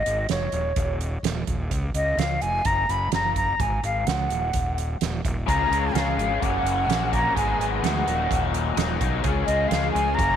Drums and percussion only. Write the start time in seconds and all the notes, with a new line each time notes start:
0.06 closed hi-hat
0.29 snare, closed hi-hat
0.52 closed hi-hat
0.76 kick, closed hi-hat
1.01 closed hi-hat
1.24 snare, closed hi-hat
1.47 kick, closed hi-hat
1.71 kick, closed hi-hat
1.95 closed hi-hat
2.19 snare, closed hi-hat
2.42 closed hi-hat
2.65 kick, closed hi-hat
2.89 closed hi-hat
3.12 snare, closed hi-hat
3.36 kick, closed hi-hat
3.60 kick, closed hi-hat
3.84 closed hi-hat
4.07 snare, closed hi-hat
4.30 closed hi-hat
4.53 kick, closed hi-hat
4.78 closed hi-hat
5.01 snare, closed hi-hat
5.25 kick, closed hi-hat
5.48 kick, closed hi-hat
5.73 closed hi-hat
5.95 snare, closed hi-hat
6.19 closed hi-hat
6.42 kick, closed hi-hat
6.66 closed hi-hat
6.90 snare, closed hi-hat
7.13 kick, closed hi-hat
7.37 kick, closed hi-hat
7.61 closed hi-hat
7.84 snare, closed hi-hat
8.08 closed hi-hat
8.31 kick, closed hi-hat
8.54 closed hi-hat
8.77 snare, closed hi-hat
9.01 kick, closed hi-hat
9.24 kick, closed hi-hat
9.48 closed hi-hat
9.71 snare, closed hi-hat
9.96 closed hi-hat
10.19 kick, closed hi-hat